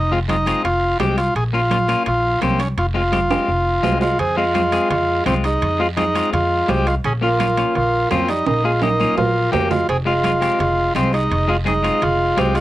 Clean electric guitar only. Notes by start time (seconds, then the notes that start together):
0.12 G#3 C4 F4
0.28 G#3 C4 F4
0.46 G#3 C4 F4
1.00 G#3 C4 G4
1.53 A#3 C#4 F4
1.71 A#3 C#4 F4
1.88 A#3 C#4 F4
2.42 A#3 C#4 G4
2.94 G#3 C4 F4
3.12 G#3 C4 G4
3.31 G#3 C4 G4
3.83 G#3 C4 F4
4.37 G#3 C4 F4
4.54 G#3 C4 F4
4.72 G#3 C4 G#4
5.26 G#3 C4 F4
5.79 G#3 C4 F4
5.97 G#3 C4 F4
6.15 G#3 C4 F4
6.68 G#3 C4 F4
7.21 A#3 C#4 F4
7.39 A#3 C#4 F4
7.57 A#3 C#4 F4
8.11 A#3 C#4 F4
8.64 A#3 C#4 G#4
8.82 A#3 C#4 G4
9.00 A#3 C#4 F4
9.52 A#3 C#4 G4
10.05 G#3 C4 F4
10.24 G#3 C4 F4
10.41 G#3 C4 G4
10.95 G#3 C4 F4
11.48 G#3 C4 G#4
11.65 G#3 C4 G#4
11.83 G#3 C4 F4
12.37 G#3 C4 F4